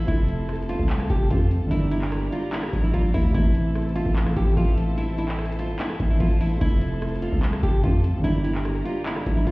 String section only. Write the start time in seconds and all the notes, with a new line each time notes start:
Already playing: A4 C5
0.08 F3 A5
1.71 G4 A#4 D5 A#5
3.34 E4 A4 C5 A5
6.61 F3 A4
8.24 G4 A#4 D5 A#5